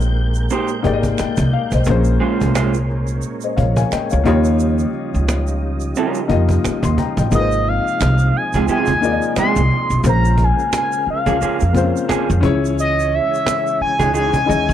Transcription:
Already playing: A#1 A#2 G#3 A#3 D#4 G4 G#4 C5 G5
0.01 cajon slap, shaker
0.16 cajon slap
0.34 shaker
0.50 A#3 D#4 G4 C5, cajon slap, shaker
0.68 shaker
0.82 G#1 A#3 D#4 G4 G#4, cajon bass
0.87 D5
0.93 D#5
1.03 cajon bass, shaker
1.18 D#5 G5, finger snap, muted upright bass stroke, cajon slap, shaker
1.37 C2, cajon bass, shaker
1.52 F5, cajon slap
1.71 B1 C5 D#5, cajon bass, shaker
1.85 A#1 A#3 C#4 F4, cajon bass, shaker
1.89 G#4 C5
2.04 cajon slap, shaker
2.20 G#3 C#4 F4 C5, cajon slap
2.41 C2, cajon bass, shaker
2.54 G#3 C#4 F4 C5, finger snap, cajon slap, shaker
2.74 cajon slap, shaker
2.89 cajon slap
3.08 shaker
3.22 cajon slap, shaker
3.41 C5 D#5, shaker
3.57 A#1 C#5 F5, cajon bass
3.76 F5 G#5, cajon bass, shaker
3.91 D#5 G5, finger snap, muted upright bass stroke, cajon slap, shaker
4.10 C#2 C#5 F5, shaker
4.24 D#2 C#3 F3 G3 A#3 D#4 F4 G4, cajon bass
4.28 C#5
4.44 shaker
4.60 shaker
4.79 shaker
4.93 cajon slap
5.14 C#2, shaker
5.28 finger snap, cajon slap, shaker
5.47 shaker
5.80 cajon slap, shaker
5.95 G3 C#4 F4 A#4, cajon slap, shaker
6.15 shaker
6.28 F2 A#3 D#4 F4 G4 D#5, cajon bass
6.49 cajon bass, shaker
6.64 finger snap, muted upright bass stroke, cajon slap, shaker
6.83 D#2 C6, cajon bass, shaker
6.98 G5 A#5, cajon bass
7.17 A1 D#5 G5, cajon bass, cajon slap, shaker
7.30 G#1 C3 F3 G#3 A#3 D#4 F4 G#4, cajon bass, shaker
7.35 B4 D#5
7.41 C5
7.52 cajon slap, shaker
7.66 F5, cajon slap
7.87 shaker
8.01 C2, finger snap, cajon slap, shaker
8.19 cajon slap, shaker
8.35 G#5, cajon slap
8.53 C#2 G#3 C4 F4 G#4, cajon bass, cajon slap, shaker
8.68 G#3 C4 F4 G#4 G#5, muted upright bass stroke, cajon slap, shaker
8.86 D#2, cajon bass, shaker
9.01 A#3 D#4 F4 G#4, cajon slap, shaker
9.05 D5
9.12 D#5
9.22 shaker
9.36 G#3 C4 F4 G#4 C6, finger snap, muted upright bass stroke, cajon slap, shaker
9.56 C2, shaker
9.69 cajon slap
9.90 B1, shaker
10.03 A#1 C#3 A#3 C#4 F4 G#4 C5, cajon bass, shaker
10.09 A#5
10.25 shaker
10.37 cajon bass
10.44 G#5
10.59 shaker
10.73 finger snap, cajon slap, shaker
10.77 G#5
10.92 cajon slap, shaker
11.06 muted upright bass stroke, cajon slap
11.10 F5
11.26 C#2 F3 A#3 C#4 G#4, cajon bass, cajon slap, shaker
11.41 F3 A#3 C#4 G#4, muted upright bass stroke, shaker
11.60 F2, shaker
11.73 A#3 C4 F4 G#4, cajon bass, shaker
11.77 C#4 C5
11.96 shaker
12.09 F3 A#3 C#4 G#4, finger snap, muted upright bass stroke, cajon slap, shaker
12.30 F2, shaker
12.41 C#2 E3 C#4 E4 G#4, cajon bass
12.45 C#5
12.65 shaker
12.77 D#5, cajon slap, shaker
13.00 shaker
13.11 E5, cajon slap
13.34 shaker
13.46 finger snap, cajon slap, shaker
13.66 cajon slap, shaker
13.79 G#5, muted upright bass stroke, cajon slap
13.99 C#2 E3 G#3 D#4 G#4, cajon bass, cajon slap, shaker
14.13 E3 G#3 D#4 G#4, shaker
14.17 G#5
14.33 cajon bass, shaker
14.45 C#4 D#4 E4 G#4 D#5
14.49 D#2, shaker
14.69 C#3, shaker

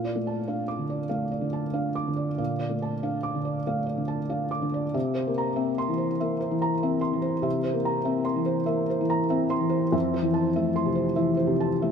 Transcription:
Already playing: A#2 F5
0.05 D5
0.15 A3
0.27 A5
0.47 D4 F5
0.68 D6
0.79 D3
0.90 D5
1.09 A3 F5
1.32 D5
1.41 D3
1.53 A5
1.74 D4 F5
1.95 D6
2.08 D3
2.16 D5
2.38 A#2 F5
2.60 D5
2.70 A3
2.82 A5
3.03 D4 F5
3.23 D6
3.35 D3
3.45 D5
3.67 A3 F5
3.86 D5
3.97 D3
4.08 A5
4.29 D4 F5
4.51 D6
4.62 D3
4.74 D5
4.94 C3 E5
5.15 C5
5.27 A#3
5.38 A#5
5.56 C4 E5
5.78 C6
5.89 E3
5.98 C5
6.20 A#3 E5
6.41 C5
6.51 E3
6.62 A#5
6.83 C4 E5
7.01 C6
7.13 E3
7.22 C5
7.42 C3 E5
7.64 C5
7.74 A#3
7.85 A#5
8.05 C4 E5
8.25 C6
8.36 E3
8.46 C5
8.66 A#3 E5
8.90 C5
9.01 E3
9.10 A#5
9.30 C4 E5
9.50 C6
9.60 E3
9.70 C5
9.92 F2 E5
10.14 C5
10.22 E3
10.34 A5
10.56 A3 E5
10.76 C6
10.85 C3
10.95 C5
11.16 E3 E5
11.37 C5
11.47 C3
11.60 A5
11.82 A3 E5

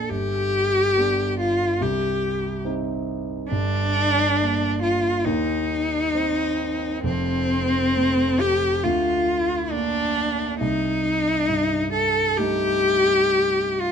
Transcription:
Already playing: A#1 A#3 D4 A4
0.10 G1 G4
0.97 B3 D4
1.40 F4
1.81 C2 G4
2.65 C4 D#4
3.48 G1 G2 D4
4.39 A#3 D4
4.83 F4
5.25 D#2 D#4
6.15 C4
7.03 F1 F2 C4
7.95 A3 C4
8.40 G4
8.84 D2 F4
9.71 A#3 D4
10.59 C2 D#4
11.48 G2
11.93 A4
12.38 G3 A3 D#4 G4
13.81 F4

